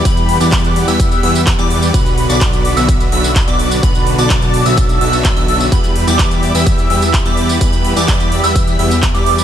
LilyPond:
<<
  \new Staff \with { instrumentName = "Digital synth lead" } { \time 4/4 \key e \minor \tempo 4 = 127 b''8. d'''4 e'''8. e'''16 r8 d'''8. | b''8. d'''4 e'''8. e'''16 r8 d'''8. | b''8. d'''4 e'''8. e'''8. e'''8. | b''8. d'''4 e'''8. e'''16 r8 d'''8. |
b''8. d'''4 e'''8. e'''16 r8 d'''8. | }
  \new Staff \with { instrumentName = "Analog synth pad" } { \time 4/4 \key e \minor << { b''1 | b''1 | a''1 | b''1~ |
b''1 | } \\ { <g' fis''>1 | <fis' d''>1~ | <fis' d''>1 | <g' e''>1~ |
<g' e''>1 | } >> }
  \new Staff \with { instrumentName = "Supersaw synth" } { \time 4/4 \key e \minor <e g b g' b'>8. <e g b g' d''>4 <e g b g' e''>8. <e g b g' e''>16 r8 <e g b g' d''>8. | <d fis b fis' b'>8. <d fis b fis' d''>4 <d fis b fis' e''>8. <d fis b fis' e''>16 r8 <d fis b fis' d''>8. | <d fis b fis' b'>8. <d fis b fis' d''>4 <d fis b fis' e''>8. <d fis b fis' e''>8. <d fis b fis' e''>8. | <e g b g' b'>8. <e g b g' d''>4 <e g b g' e''>8. <e g b g' e''>16 r8 <e g b g' d''>8. |
<e g b g' b'>8. <e g b g' d''>4 <e g b g' e''>8. <e g b g' e''>16 r8 <e g b g' d''>8. | }
  \new Staff \with { instrumentName = "Analog synth bass" } { \clef bass \time 4/4 \key e \minor e,8. e,4 e,8. e,8. e,8. | b,,8. b,,4 b,,8. b,,8. b,,8. | b,,8. b,,4 b,,8. b,,8. b,,8. | e,8. e,4 e,8. e,8. e,8. |
e,8. e,4 e,8. e,8. e,8. | }
  \new DrumStaff \with { instrumentName = "Drums" } \drummode { \time 4/4 <hh bd tamb>16 <hh tamb>16 hho16 <hh tamb>16 <hc hh bd tamb>16 <hh tamb>16 hho16 <hh tamb>16 <hh bd tamb>16 <hh tamb>16 hho16 <hh tamb>16 <hc hh bd tamb>16 <hh tamb>16 hho16 <hh tamb>16 | <hh bd tamb>16 <hh tamb>16 hho16 <hh tamb>16 <hc hh bd tamb>16 <hh tamb>16 hho16 <hh tamb>16 <hh bd tamb>16 <hh tamb>16 hho16 <hh tamb>16 <hc hh bd tamb>16 <hh tamb>16 hho16 <hh tamb>16 | <hh bd tamb>16 <hh tamb>16 hho16 <hh tamb>16 <hc hh bd tamb>16 <hh tamb>16 hho16 <hh tamb>16 <hh bd tamb>16 <hh tamb>16 hho16 <hh tamb>16 <hc hh bd tamb>16 <hh tamb>16 hho16 <hh tamb>16 | <hh bd tamb>16 <hh tamb>16 hho16 <hh tamb>16 <hc hh bd tamb>16 <hh tamb>16 hho16 <hh tamb>16 <hh bd tamb>16 <hh tamb>16 hho16 <hh tamb>16 <hc hh bd tamb>16 <hh tamb>16 hho16 <hh tamb>16 |
<hh bd tamb>16 <hh tamb>16 hho16 <hh tamb>16 <hc hh bd tamb>16 <hh tamb>16 hho16 <hh tamb>16 <hh bd tamb>16 <hh tamb>16 hho16 <hh tamb>16 <hc hh bd tamb>16 <hh tamb>16 hho16 <hh tamb>16 | }
>>